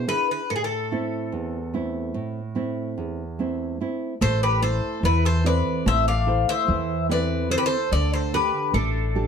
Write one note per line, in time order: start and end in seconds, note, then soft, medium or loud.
0.07 0.40 D4 soft
0.07 0.41 E4 soft
0.07 0.41 G#4 soft
0.07 0.27 B4 medium
0.31 0.49 B4 medium
0.50 1.30 A2 medium
0.50 0.55 A4 medium
0.56 0.63 G#4 medium
0.64 2.11 A4 medium
0.92 1.57 A3 soft
0.92 1.57 C4 soft
0.92 1.57 E4 medium
1.32 2.12 E2 medium
1.74 2.39 A3 soft
1.74 2.39 C4 soft
1.74 2.40 E4 soft
2.14 2.94 A2 medium
2.55 3.21 A3 soft
2.55 3.22 C4 soft
2.55 3.22 E4 soft
2.98 3.77 E2 medium
3.39 3.79 A3 soft
3.39 3.80 C4 soft
3.39 3.80 E4 soft
3.80 4.13 A3 soft
3.80 4.13 C4 soft
3.80 4.13 E4 soft
4.21 4.79 A1 medium
4.21 5.01 A3 medium
4.21 4.40 A4 medium
4.21 4.41 C5 medium
4.43 4.61 G4 medium
4.43 4.62 B4 medium
4.62 5.28 E4 soft
4.62 5.28 A4 soft
4.62 5.01 A4 medium
4.62 5.05 C5 medium
4.62 5.29 C5 medium
5.03 5.61 E2 medium
5.03 5.83 E3 medium
5.03 5.23 E4 medium
5.03 5.23 B4 medium
5.25 5.44 A4 medium
5.25 5.44 C5 medium
5.44 6.11 C4 medium
5.44 6.10 E4 soft
5.44 6.10 A4 soft
5.44 5.84 B4 medium
5.44 5.87 D5 medium
5.86 6.43 A1 medium
5.86 6.65 A3 medium
5.86 6.06 C5 medium
5.86 6.08 E5 loud
6.08 6.45 D5 medium
6.08 6.49 F5 medium
6.27 6.93 E4 soft
6.27 6.93 A4 soft
6.27 6.93 C5 medium
6.49 7.06 C5 medium
6.49 7.06 E5 medium
6.68 7.55 E2 medium
6.68 7.48 E3 medium
7.09 7.75 C4 medium
7.09 7.48 E4 soft
7.09 7.49 A4 soft
7.09 7.49 B4 medium
7.09 7.48 D5 medium
7.49 7.83 E4 soft
7.49 7.83 A4 soft
7.49 7.58 A4 medium
7.49 7.83 C5 soft
7.49 7.57 C5 medium
7.58 7.64 G4 medium
7.58 7.64 B4 medium
7.66 7.90 A4 medium
7.66 7.92 C5 medium
7.91 8.49 D2 medium
7.91 8.71 D3 medium
7.91 8.12 A4 medium
7.91 8.13 D5 loud
8.13 8.33 A4 medium
8.13 8.34 C5 medium
8.33 8.99 D4 soft
8.33 8.98 G4 soft
8.33 8.72 G4 medium
8.33 8.99 A4 medium
8.33 8.71 B4 medium
8.74 9.27 A1 medium
8.74 9.27 A3 medium
8.74 9.27 D4 medium
8.74 9.27 A4 medium
9.15 9.27 D4 soft
9.15 9.27 G4 soft
9.15 9.27 A4 medium